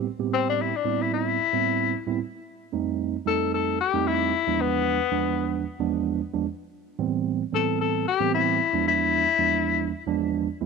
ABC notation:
X:1
M:4/4
L:1/16
Q:"Swing 16ths" 1/4=112
K:Em
V:1 name="Tenor saxophone"
z2 C D E D2 E E8 | z8 A2 A2 G2 E2- | E2 B,8 z6 | z8 A2 A2 G2 E2- |
E2 E8 z6 |]
V:2 name="Tine electric piano" clef=bass
z [A,,G,B,CG]4 z [A,,G,B,CE]4 z [A,,G,B,CE]3 z [A,,G,B,CE] | z4 [=F,,G,A,C_E]3 z [F,,G,A,CE]4 z [F,,G,A,CE]3 | z [E,,=F,^G,B,D]4 z [E,,F,G,B,D]4 z [E,,F,G,B,D]3 z [E,,F,G,B,D] | z4 [A,,E,G,B,C]3 z [A,,E,G,B,C]4 z [A,,E,G,B,C]3 |
z [E,,=F,^G,B,D]4 z [E,,F,G,B,D]4 z [E,,F,G,B,D]3 z [E,,F,G,B,E] |]